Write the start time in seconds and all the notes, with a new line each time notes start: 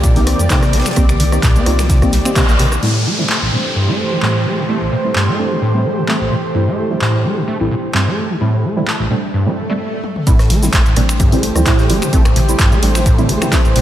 Already playing: C2 D#3 A#3 C4 D#4 F4 G4 D5
0.03 A#2, kick, closed hi-hat, ride, shaker
0.16 A#3 C4 D#4 G4, open hi-hat, shaker
0.27 cross-stick, open hi-hat, ride
0.39 F2 F3, closed hi-hat, shaker
0.50 C3 A#3 C4 D#4 A4, kick, snare, clap, closed hi-hat, ride, shaker
0.63 cross-stick, snare, closed hi-hat, shaker
0.73 A#1 C4, snare, open hi-hat, ride
0.79 snare, ride
0.85 D#3, finger snap, snare, closed hi-hat, ride, shaker
0.91 snare, ride
0.96 C2 A#3 C4 D#4 G4, kick, cross-stick, closed hi-hat, ride, shaker
1.09 C2, finger snap, closed hi-hat, shaker
1.20 C2 D3, open hi-hat, ride
1.32 A#3 C4 D#4 G4, cross-stick, closed hi-hat, shaker
1.43 C2 A#2, kick, snare, clap, closed hi-hat, ride, shaker
1.56 C4, closed hi-hat, ride, shaker
1.66 C2 A#3 C4 D#4 F4, cross-stick, open hi-hat, ride
1.79 F3, finger snap, snare, closed hi-hat, shaker
1.89 C3, kick, snare, closed hi-hat, ride, shaker
2.02 A#3 C4 D#4 G4, kick, cross-stick, closed hi-hat, shaker
2.12 G3, snare, open hi-hat, ride
2.25 A#3 C4 D#4 G4, finger snap, closed hi-hat, shaker
2.36 C3 A#3 C4 D#4 G4, kick, cross-stick, snare, clap, closed hi-hat, ride, shaker
2.49 A#1 A#3, closed hi-hat, shaker
2.59 A#1 C3 A#3 C4 D#4 G4, snare, open hi-hat, ride
2.72 cross-stick, closed hi-hat, shaker
2.83 A2 E3 G3 A3 C4 E4 G4 C5, crash, downlifter
3.06 A3
3.18 C3 G3 A3 C4 E4
3.29 A3, clap
3.42 A1
3.52 A#2 G3 A3 C4 D4
3.76 G2
3.88 G3 A3 C4 E4
4.11 D3
4.22 A2 G3 A3 C4 G4, clap
4.45 A3
4.58 C3
4.69 G3 A3 C4 E4
4.81 A1
4.92 A#2
5.04 G3 A3 C4 E4
5.15 G2, clap
5.28 A3
5.38 G3 A3 C4 D4
5.51 D3
5.62 A2
5.74 G3 A3 C4 E4
5.85 A3
5.97 C3
6.08 G3 A3 C4 G4, clap
6.21 A1
6.31 A#2
6.55 G2 G3 A3 C4 E4
6.67 A3
6.90 D3 G3 A3 C4 E4
7.01 A2, clap
7.24 G3 A3 C4 D4
7.37 C3
7.48 A3
7.60 A1 G3 A3 C4 E4
7.71 A#2
7.94 G2 G3 A3 C4 G4, clap
8.07 A3
8.30 D3
8.41 A2 G3 A3 C4 E4
8.64 A3
8.77 C3 G3 A3 C4 E4
8.87 A3, clap
9.00 A1
9.11 A#2 G3 A3 C4 D4
9.34 G2, swell
9.46 G3 A3 C4 E4
9.70 G3 A3 C4 E4
10.04 high tom
10.16 mid tom
10.27 A1 A2 E3 G3 A3 C4 E4 G4 C5, kick, closed hi-hat, ride, shaker
10.39 cross-stick, snare, closed hi-hat, shaker
10.50 A1 A3, snare, open hi-hat, mid tom, ride
10.63 C3 G3 A3 C4 E4, snare, closed hi-hat, shaker
10.73 A1 A3, kick, snare, clap, closed hi-hat, ride, shaker
10.86 A1, closed hi-hat, ride, shaker
10.96 A1 A#2 G3 A3 C4 D4, cross-stick, open hi-hat, ride
11.09 finger snap, closed hi-hat, shaker
11.20 G2, kick, closed hi-hat, mid tom, ride, shaker
11.32 G3 A3 C4 E4, open hi-hat, shaker
11.43 open hi-hat, ride
11.56 D2 D3 G3 A3 C4 E4, cross-stick, closed hi-hat, shaker
11.66 A2 G3 A3 C4 E4, kick, snare, clap, closed hi-hat, ride, shaker
11.79 snare, closed hi-hat, shaker
11.90 G1 G3 A3 C4 E4, open hi-hat, ride
12.02 C3, finger snap, closed hi-hat, mid tom, shaker
12.13 A1 G3 A3 C4 E4, kick, closed hi-hat, ride, shaker
12.25 A1, finger snap, cross-stick, closed hi-hat, shaker
12.36 A1 A#2, open hi-hat, mid tom, ride
12.49 G3 A3 C4 E4, closed hi-hat, shaker
12.59 A1 G2, kick, snare, clap, closed hi-hat, ride, shaker
12.72 A3, closed hi-hat, ride, shaker
12.83 A1 G3 A3 C4 D4, open hi-hat, ride
12.95 D3, finger snap, snare, closed hi-hat, shaker
13.06 A2, kick, closed hi-hat, ride, shaker
13.18 G3 A3 C4 E4, closed hi-hat, mid tom, shaker
13.29 A3, open hi-hat, ride
13.42 C3 G3 A3 C4 E4, finger snap, cross-stick, closed hi-hat, mid tom, shaker
13.52 G3 A3 C4 E4, kick, snare, clap, closed hi-hat, ride, shaker
13.65 A1, closed hi-hat, shaker
13.76 G1 A#2 G3 A3 C4 E4, open hi-hat, ride